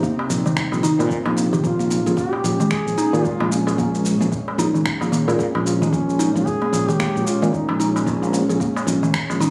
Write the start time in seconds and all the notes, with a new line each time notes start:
Already playing: C3 C4 D#4
0.03 A#3, kick, shaker
0.19 darbuka tek
0.30 A#1, shaker
0.46 G3, darbuka dum, shaker
0.56 finger snap, kick, shaker
0.72 A#1, darbuka ka, darbuka tek, shaker
0.83 D#4, darbuka dum, shaker
0.99 A#2, darbuka tek, shaker
1.10 kick, shaker
1.26 A#1 A#3, darbuka tek
1.37 A#3, shaker
1.53 G4, darbuka dum, shaker
1.64 A#1 A#2 G#3 C#4 F4, kick, shaker
1.79 A#3, shaker
1.90 A#3, shaker
2.06 A#1 G#4, shaker
2.17 A#3 G4, kick, shaker
2.33 darbuka tek
2.44 A#1, darbuka ka, shaker
2.60 G#3, darbuka dum, shaker
2.71 G#4, finger snap, kick, shaker
2.87 A#1, shaker
2.98 D#4, shaker
3.13 A#2, darbuka dum, shaker
3.25 F4, kick, shaker
3.40 A#1 A#3, darbuka ka, darbuka tek
3.51 A#3 C#4, shaker
3.67 G#4, darbuka ka, shaker
3.78 A#1 A#3, kick, shaker
3.95 shaker
4.05 shaker
4.21 A#1 G#3, shaker
4.32 kick, shaker
4.48 darbuka tek
4.58 A#1 D#4, shaker
4.74 darbuka dum, shaker
4.86 finger snap, kick, shaker
5.01 A#1 A#3, darbuka ka, darbuka tek, shaker
5.12 A#3, darbuka dum, shaker
5.28 A#2 G#4, darbuka tek, shaker
5.39 A#3, kick, shaker
5.55 A#1, darbuka tek
5.66 F4, shaker
5.82 G#3 D#4, darbuka dum, shaker
5.93 A#1 G#3 C#4, kick, shaker
6.09 shaker
6.19 D#4, shaker
6.35 A#1 F4, shaker
6.46 G#4, kick, shaker
6.62 A#3, darbuka tek
6.73 A#1 A#3, darbuka ka, shaker
6.88 G4 G#4, darbuka dum, shaker
6.99 A#3, finger snap, kick, shaker
7.16 A#1, shaker
7.26 F4, shaker
7.42 A#2 G#3, darbuka dum, shaker
7.53 D#4, kick, shaker
7.69 A#1, darbuka ka, darbuka tek
7.74 D#4
7.80 C#4 D#4, shaker
7.96 darbuka ka, shaker
8.07 A#1, kick, shaker
8.23 A#3, shaker
8.33 A#3, shaker
8.49 A#1 G#4, shaker
8.60 A#3, kick, shaker
8.76 darbuka tek, shaker
8.87 A#1, shaker
9.03 G#3, darbuka dum, shaker
9.14 finger snap, kick, shaker
9.30 A#1, darbuka ka, darbuka tek, shaker
9.40 D#4, darbuka dum, shaker